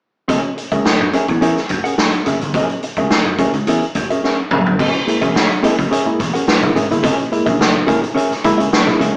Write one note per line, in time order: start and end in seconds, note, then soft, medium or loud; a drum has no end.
0.28 0.40 F#1 medium
0.28 0.49 C#4 medium
0.28 0.43 G#4 medium
0.28 0.43 A#4 medium
0.28 0.42 E5 medium
0.28 kick medium
0.28 closed hi-hat medium
0.43 muted hollow-body jazz guitar stroke soft
0.57 muted hollow-body jazz guitar stroke soft
0.57 closed hi-hat medium
0.71 0.82 C#2 medium
0.71 0.84 C#4 medium
0.71 0.84 G#4 medium
0.71 0.84 A#4 medium
0.71 0.83 E5 medium
0.71 kick medium
0.71 closed hi-hat soft
0.85 muted slap bass stroke soft
0.85 snare loud
1.00 1.10 F#2 medium
1.00 muted hollow-body jazz guitar stroke soft
1.13 1.30 C#4 medium
1.13 1.28 G#4 medium
1.13 1.28 A#4 medium
1.13 1.27 E5 medium
1.13 closed hi-hat medium
1.28 1.38 E2 medium
1.28 muted hollow-body jazz guitar stroke soft
1.28 kick medium
1.28 closed hi-hat soft
1.41 1.52 E2 medium
1.41 1.58 C#4 medium
1.41 1.58 G#4 medium
1.41 1.58 A#4 loud
1.41 1.59 E5 loud
1.41 closed hi-hat medium
1.57 snare soft
1.57 closed hi-hat soft
1.69 1.81 F#2 medium
1.69 muted hollow-body jazz guitar stroke soft
1.69 kick medium
1.69 closed hi-hat medium
1.84 1.96 C#4 soft
1.84 1.96 G#4 medium
1.84 1.96 A#4 medium
1.84 1.96 F#5 medium
1.84 closed hi-hat medium
1.98 muted hollow-body jazz guitar stroke soft
1.98 snare loud
2.13 closed hi-hat soft
2.26 2.38 F#1 medium
2.26 2.39 C#4 medium
2.26 2.39 G#4 medium
2.26 2.40 A#4 medium
2.26 2.40 E5 medium
2.26 closed hi-hat medium
2.41 2.51 G1 medium
2.41 muted hollow-body jazz guitar stroke soft
2.41 closed hi-hat medium
2.54 2.65 F#1 medium
2.54 2.75 C#4 medium
2.54 2.69 G#4 medium
2.54 2.69 A#4 medium
2.54 2.68 E5 medium
2.54 kick loud
2.54 closed hi-hat medium
2.69 muted hollow-body jazz guitar stroke soft
2.69 closed hi-hat soft
2.83 muted hollow-body jazz guitar stroke soft
2.83 closed hi-hat medium
2.96 3.07 C#2 medium
2.96 3.10 C#4 medium
2.96 3.10 G#4 medium
2.96 3.10 A#4 medium
2.96 3.09 E5 medium
2.96 kick medium
2.96 closed hi-hat soft
3.10 muted slap bass stroke soft
3.10 snare loud
3.25 3.35 F#2 medium
3.25 muted hollow-body jazz guitar stroke soft
3.38 3.55 C#4 medium
3.38 3.55 G#4 medium
3.38 3.54 A#4 medium
3.38 3.53 E5 medium
3.38 kick medium
3.38 closed hi-hat medium
3.53 3.63 C#2 medium
3.53 muted hollow-body jazz guitar stroke soft
3.53 closed hi-hat soft
3.67 3.78 E2 medium
3.67 3.84 C#4 medium
3.67 3.84 G#4 medium
3.67 3.84 A#4 medium
3.67 3.84 E5 medium
3.67 closed hi-hat medium
3.82 closed hi-hat soft
3.95 4.06 F#2 medium
3.95 muted hollow-body jazz guitar stroke soft
3.95 kick medium
3.95 closed hi-hat medium
4.10 4.22 C#4 soft
4.10 4.22 G#4 soft
4.10 4.22 A#4 medium
4.10 4.22 E5 medium
4.10 closed hi-hat soft
4.24 4.40 C#4 medium
4.24 4.39 G#4 medium
4.24 4.38 A#4 medium
4.24 4.38 E5 medium
4.24 snare soft
4.39 muted hollow-body jazz guitar stroke soft
4.51 4.65 F#1 medium
4.51 4.64 C#4 medium
4.51 4.65 G#4 medium
4.51 4.65 A#4 medium
4.51 4.65 E5 medium
4.51 mid tom medium
4.65 4.76 G1 medium
4.65 muted hollow-body jazz guitar stroke soft
4.65 floor tom medium
4.79 4.90 F#1 loud
4.79 4.93 F#3 medium
4.79 5.00 C#4 medium
4.79 4.94 G#4 medium
4.79 4.94 A#4 medium
4.79 4.93 E5 medium
4.79 kick medium
4.79 crash medium
4.79 muted conga soft
4.79 low conga medium
4.94 4.99 A#3 soft
4.94 4.99 E4 soft
4.94 muted hollow-body jazz guitar stroke soft
5.07 5.21 G#3 medium
5.07 5.21 A#3 medium
5.07 5.21 E4 medium
5.07 muted hollow-body jazz guitar stroke soft
5.07 closed hi-hat medium
5.07 muted conga soft
5.21 5.32 E1 medium
5.21 5.34 C#4 medium
5.21 5.34 G#4 medium
5.21 5.34 A#4 medium
5.21 5.33 E5 medium
5.21 kick medium
5.21 closed hi-hat soft
5.35 5.41 A#3 soft
5.35 5.41 E4 soft
5.35 snare loud
5.35 muted conga soft
5.35 high conga medium
5.50 5.62 F#3 medium
5.50 muted hollow-body jazz guitar stroke soft
5.50 closed hi-hat soft
5.63 5.77 G#3 medium
5.63 5.77 A#3 medium
5.63 5.84 C#4 medium
5.63 5.77 E4 medium
5.63 5.78 G#4 medium
5.63 5.77 A#4 medium
5.63 5.77 E5 medium
5.63 muted slap bass stroke soft
5.63 closed hi-hat medium
5.78 5.88 F#1 medium
5.78 muted hollow-body jazz guitar stroke soft
5.78 kick medium
5.78 closed hi-hat soft
5.78 high conga medium
5.91 6.08 C#4 medium
5.91 6.08 G#4 loud
5.91 6.08 A#4 medium
5.91 6.08 E5 loud
5.91 closed hi-hat medium
5.91 high conga medium
6.06 6.18 G#3 medium
6.06 6.18 A#3 medium
6.06 6.19 E4 medium
6.06 muted slap bass stroke soft
6.20 6.31 E1 medium
6.20 muted hollow-body jazz guitar stroke soft
6.20 kick medium
6.20 closed hi-hat medium
6.20 high conga medium
6.34 6.47 F#3 medium
6.34 6.47 C#4 medium
6.34 6.46 G#4 medium
6.34 6.46 A#4 medium
6.34 6.46 F#5 soft
6.34 closed hi-hat medium
6.47 muted hollow-body jazz guitar stroke soft
6.47 snare loud
6.47 high conga medium
6.62 6.72 F#1 medium
6.62 6.75 G#3 medium
6.62 6.75 A#3 medium
6.62 6.75 E4 medium
6.62 closed hi-hat soft
6.62 low conga medium
6.75 6.87 G#1 medium
6.75 6.90 F#3 medium
6.75 6.88 C#4 medium
6.75 6.89 G#4 medium
6.75 6.89 A#4 medium
6.75 6.89 E5 medium
6.75 closed hi-hat medium
6.75 muted conga soft
6.90 7.01 G1 medium
6.90 7.03 G#3 medium
6.90 7.03 A#3 medium
6.90 7.03 E4 medium
6.90 muted hollow-body jazz guitar stroke soft
6.90 closed hi-hat medium
6.90 high conga medium
7.03 7.15 F#1 loud
7.03 7.18 F#3 medium
7.03 7.24 C#4 medium
7.03 7.18 G#4 medium
7.03 7.18 A#4 medium
7.03 7.17 E5 medium
7.03 kick loud
7.03 closed hi-hat medium
7.03 muted conga soft
7.03 low conga medium
7.18 7.24 A#3 soft
7.18 7.24 E4 soft
7.18 muted hollow-body jazz guitar stroke soft
7.18 closed hi-hat soft
7.32 7.46 G#3 medium
7.32 7.46 A#3 medium
7.32 7.46 E4 medium
7.32 muted hollow-body jazz guitar stroke soft
7.32 closed hi-hat medium
7.32 muted conga soft
7.46 7.56 A#1 medium
7.46 7.59 C#4 medium
7.46 7.58 G#4 medium
7.46 7.58 A#4 medium
7.46 7.58 E5 medium
7.46 kick medium
7.46 closed hi-hat soft
7.59 7.81 F#1 medium
7.59 7.66 A#3 soft
7.59 7.66 E4 soft
7.59 snare loud
7.59 muted conga soft
7.59 high conga medium
7.75 7.87 F#3 medium
7.75 muted hollow-body jazz guitar stroke soft
7.87 8.02 G#3 medium
7.87 8.02 A#3 medium
7.87 8.04 C#4 medium
7.87 8.02 E4 medium
7.87 8.02 G#4 medium
7.87 8.01 A#4 loud
7.87 8.00 E5 medium
7.87 kick medium
7.87 closed hi-hat medium
7.87 muted conga soft
8.02 muted hollow-body jazz guitar stroke soft
8.02 closed hi-hat soft
8.02 high conga medium
8.15 8.32 C#4 medium
8.15 8.32 G#4 medium
8.15 8.32 A#4 medium
8.15 8.33 E5 loud
8.15 closed hi-hat medium
8.15 muted conga soft
8.15 high conga medium
8.31 muted slap bass stroke soft
8.31 snare soft
8.31 closed hi-hat soft
8.44 8.66 C#2 medium
8.44 8.58 G#3 medium
8.44 8.58 A#3 medium
8.44 8.58 E4 loud
8.44 muted hollow-body jazz guitar stroke soft
8.44 kick medium
8.44 closed hi-hat medium
8.44 muted conga soft
8.44 high conga medium
8.58 8.71 C#4 medium
8.58 8.71 G#4 medium
8.58 8.70 A#4 medium
8.58 8.70 E5 medium
8.58 closed hi-hat medium
8.72 muted hollow-body jazz guitar stroke soft
8.72 snare loud
8.72 high conga medium
8.87 8.99 G#3 medium
8.87 8.99 A#3 medium
8.87 9.00 E4 medium
8.87 snare soft
8.87 low conga medium
8.99 9.11 C#2 medium
8.99 9.13 C#4 medium
8.99 9.13 G#4 medium
8.99 9.13 A#4 medium
8.99 9.14 E5 medium
8.99 closed hi-hat medium
8.99 muted conga soft